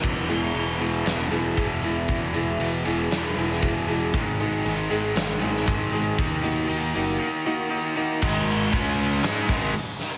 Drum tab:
CC |x---------------|----------------|----------------|----------------|
HH |--o-o-o-o-o-o-o-|o-o-o-o-o-o-o-o-|o-o-o-o-o-o-o-o-|o-o-o-o---------|
SD |--------o-------|--------o--o----|--------o--o----|----------------|
BD |o-----------o---|o-----------o---|o-----------o---|o---------------|

CC |x---------------|
HH |----o---o---o---|
SD |--------o-----o-|
BD |o---o-----o-----|